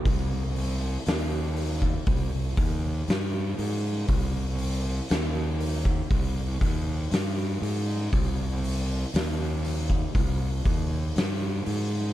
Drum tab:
HH |o-o-o-o-o-o-o-o-|o-o-o-o-o-o-o-o-|o-o-o-o-o-o-o-o-|
SD |----o-------o---|----o-------o---|----o-------o---|
BD |o------oo-o-----|o------oo-o-----|o------oo-o-----|